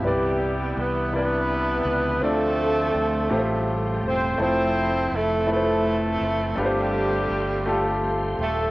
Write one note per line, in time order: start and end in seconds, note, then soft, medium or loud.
0.04 0.73 C2 medium
0.04 1.10 C3 soft
0.04 0.81 G3 medium
0.04 0.80 B3 medium
0.04 2.21 B3 soft
0.04 1.11 B3 medium
0.04 0.81 E4 soft
0.04 0.75 G4 medium
0.04 0.82 B4 soft
0.04 3.29 D5 soft
0.04 0.82 D5 medium
0.04 2.21 E5 soft
0.04 3.28 G5 medium
0.08 1.11 E4 soft
0.77 1.82 C2 medium
0.77 1.15 B3 medium
0.77 1.15 B4 medium
1.12 1.89 C3 soft
1.12 2.25 B3 medium
1.12 1.89 E4 soft
1.12 2.20 E4 medium
1.12 1.90 B4 soft
1.12 1.91 D5 soft
1.16 2.20 D4 soft
1.16 2.20 B4 medium
1.85 2.19 C#2 medium
2.21 2.91 D2 medium
2.21 3.27 D3 soft
2.21 3.30 F3 medium
2.21 6.54 A3 medium
2.21 3.77 A3 medium
2.21 2.98 C4 medium
2.21 3.74 C4 medium
2.21 2.98 F4 soft
2.21 3.74 F4 medium
2.21 8.71 A4 medium
2.21 2.99 A4 soft
2.21 3.78 A4 medium
2.21 2.99 D5 medium
2.95 3.28 D2 medium
3.30 4.00 A1 medium
3.30 4.36 A2 medium
3.30 4.40 C#3 soft
3.30 4.39 G3 medium
3.30 4.07 A3 medium
3.30 4.07 F4 medium
3.30 4.39 F4 medium
3.30 4.08 G4 soft
3.30 3.37 C5 medium
3.30 4.39 G5 soft
3.39 4.11 C5 medium
4.03 4.37 E1 medium
4.03 4.39 C4 medium
4.03 4.39 C5 medium
4.38 5.09 F1 medium
4.38 5.16 F3 soft
4.38 6.56 F3 medium
4.38 5.15 A3 medium
4.38 8.71 C4 medium
4.38 5.16 E4 soft
4.38 6.56 E4 medium
4.38 5.17 C5 medium
4.38 6.56 E5 soft
4.38 6.56 C6 medium
4.42 5.17 C4 medium
4.42 5.47 E4 medium
4.42 5.14 A4 medium
4.42 5.10 C5 medium
5.12 6.17 F1 medium
5.12 5.51 A3 medium
5.12 5.49 A4 medium
5.47 6.25 F3 soft
5.47 6.24 A3 soft
5.47 6.25 E4 soft
5.47 6.55 A4 medium
5.47 5.56 B4 soft
5.51 6.56 A3 medium
5.51 6.55 C4 soft
5.51 6.55 E4 soft
5.56 6.29 C5 medium
6.21 6.55 F#1 medium
6.56 7.27 G1 medium
6.56 7.63 G2 soft
6.56 8.71 G3 medium
6.56 7.33 A3 medium
6.56 8.71 A3 medium
6.56 7.34 F4 soft
6.56 8.71 F4 medium
6.56 7.34 G4 medium
6.56 6.65 B4 medium
6.56 8.71 G5 soft
6.56 8.71 C6 medium
6.60 8.01 G3 medium
6.60 8.01 C4 medium
6.60 8.01 D4 medium
6.60 8.05 G4 medium
6.65 7.38 C5 medium
7.30 8.36 G1 medium
7.66 8.43 A3 medium
7.66 8.43 F4 medium
7.66 8.44 G4 medium
7.66 8.44 A4 medium
8.39 8.71 D#1 medium
8.39 8.71 A3 medium
8.39 8.71 A4 medium